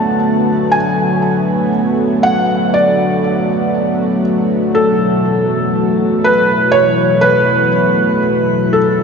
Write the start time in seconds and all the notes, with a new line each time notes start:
Already playing: D3 F#3 A3 B3 F#4 A5
0.72 G#5
2.23 F#5
2.74 D5
4.73 B2 A4
4.90 E3
6.24 B4
6.63 E4
6.72 C#5
7.21 B4
8.73 A4